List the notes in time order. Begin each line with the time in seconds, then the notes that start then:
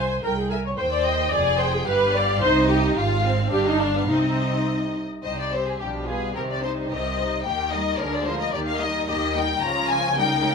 Already playing: C2 C5 G#5
0.22 C2 A#4 G5
0.38 G#4
0.50 A#4 E5 G#5
0.66 C#5
0.77 D#2 C5 G5
0.93 D5
1.04 D#5
1.31 F1 F2 G#4 D5 G#5
1.59 C5 G5
1.73 G#4
1.86 G1 G2 G4 B4 F5
2.14 D5
2.41 C2 C3 D#4 C5 D#5
2.69 G4
2.96 G#1 G#2 F4 F5
3.24 C4
3.51 G1 G2 D4 G4 F5
3.66 D#4
3.80 D4
3.96 B3
4.09 C2 C3 C4 D#4 D#5
5.24 C2 G3 D#4 G4 C5 D#5
5.39 D5
5.53 C4 G4 C5
5.68 G#4
5.78 B1 B2 F3 D4 G4
6.06 G3 B3 F4 G#4 B4
6.33 C2 C3 D#3 C4 G4 A#4
6.50 D5
6.62 G3 D#4 C5
6.89 C2 C3 D#3 C4 G4 D#5
7.17 G3 D#4 C5
7.45 D#2 D#3 A#3 G4 G5
7.71 G3 D#4 A#4 D#5
7.99 D2 D3 G#3 A#3 D4 G#4 A#4
8.12 D5
8.25 F3 G#3 F4 A#4 C5
8.39 D#5
8.52 D#2 D#3 A#3 G4 D5
8.67 F5
8.79 G3 D#4 A#4 D#5
9.07 D#2 D#3 A#3 G4 D#5
9.34 G3 D#4 A#4 G5
9.62 C#2 C#3 F3 C#4 F4 A#4 A#5
9.89 G#5
10.16 G3 A#3 D#4 A#4 G5
10.43 G#3